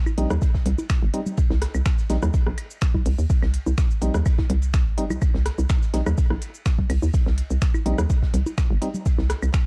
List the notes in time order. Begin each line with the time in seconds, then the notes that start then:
0.06 low bongo, cabasa, claves
0.18 A#1 G3 C4 D#4, open hi-hat, ride
0.30 D#2, cross-stick, ride, low conga, cabasa
0.42 kick, ride, cabasa
0.54 kick, snare
0.66 C2, open hi-hat, ride, low conga
0.78 ride, low bongo, cabasa
0.90 finger snap, kick, snare, ride, cabasa, claves
1.03 G1
1.14 G3 C4 D#4, open hi-hat, ride
1.26 low conga, cabasa
1.37 kick, ride, cabasa
1.50 C2, snare, low bongo
1.62 cross-stick, snare, open hi-hat, ride
1.74 C2, cabasa, claves
1.86 finger snap, kick, snare, ride, cabasa
1.98 snare, cabasa
2.10 A#1 G3 C4 D#4, snare, open hi-hat, ride
2.22 D#2, cross-stick, low bongo, low conga, cabasa
2.34 kick, ride, cabasa
2.46 A#1, cross-stick
2.58 open hi-hat, ride, claves
2.71 cabasa
2.81 finger snap, kick, snare, ride, cabasa
2.95 kick, low bongo, low conga
3.05 C2, open hi-hat
3.19 D#2, cabasa
3.30 kick, ride, cabasa
3.42 C2, snare, claves
3.54 open hi-hat, ride
3.66 C2, low bongo, cabasa
3.77 finger snap, kick, snare, ride, cabasa
3.91 cabasa
4.01 A#1 G3 C4 D#4, open hi-hat, ride
4.14 D#2, cross-stick, ride, low conga, cabasa
4.26 kick, ride, cabasa, claves
4.38 kick, snare, low bongo
4.50 C2, open hi-hat, ride, low conga
4.62 ride, cabasa
4.74 finger snap, kick, snare, ride, cabasa
4.86 A#1
4.98 G1 G3 C4 D#4, open hi-hat, ride
5.10 C2, low bongo, low conga, cabasa, claves
5.22 kick, ride, cabasa, claves
5.34 C2, snare
5.46 cross-stick, snare, open hi-hat, ride
5.58 C2, low bongo, cabasa
5.69 finger snap, kick, snare, ride, cabasa
5.82 snare, cabasa
5.94 A#1 G3 C4 D#4, snare, open hi-hat, ride
6.06 D#2, cross-stick, low conga, cabasa, claves
6.18 kick, ride, cabasa
6.30 A#1, cross-stick, low bongo
6.42 open hi-hat, ride
6.55 cabasa
6.66 finger snap, kick, snare, ride, cabasa
6.78 kick, low conga
6.90 C2, open hi-hat, claves
7.02 D#2, low bongo, cabasa
7.14 kick, ride, cabasa
7.26 C2, snare
7.38 open hi-hat, ride
7.51 C2, cabasa
7.62 finger snap, kick, snare, ride, cabasa
7.74 low bongo, cabasa, claves
7.86 A#1 G3 C4 D#4, open hi-hat, ride
7.98 D#2, cross-stick, ride, low conga, cabasa
8.10 kick, ride, cabasa
8.22 kick, snare
8.33 C2, open hi-hat, ride, low conga
8.46 ride, low bongo, cabasa
8.58 finger snap, kick, snare, ride, cabasa, claves
8.70 G1
8.82 G3 C4 D#4, open hi-hat, ride
8.94 low conga, cabasa
9.06 kick, ride, cabasa
9.18 C2, snare, low bongo
9.29 cross-stick, snare, open hi-hat, ride
9.42 C2, cabasa, claves
9.53 finger snap, kick, snare, ride, cabasa